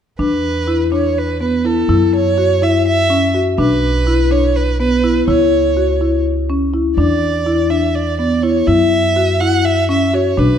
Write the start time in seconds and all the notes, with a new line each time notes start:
0.19 E2 D4 B4
0.68 E4
0.92 D4 C#5
1.18 B4
1.41 B3 B4
1.65 E4 A4
1.89 F#2 E4
2.15 C#5
2.38 F#4
2.62 E4 E5
2.87 E5
3.10 C#4
3.34 F#4
3.58 B1 D4 B4
4.07 E4
4.31 D4 C#5
4.56 B4
4.80 B3 B4
5.04 E4
5.28 C#2 E4 C#5
5.77 F#4
6.01 E4
6.50 C#4
6.74 E4
6.97 E2 D4 D5
7.46 E4
7.70 D4 E5
7.95 D5
8.19 B3 D5
8.43 E4 C#5
8.67 F#2 E4 E5
9.16 F#4
9.40 E4 F#5
9.65 E5
9.89 C#4 E5
10.13 F#4 C#5
10.37 B1 D4 B4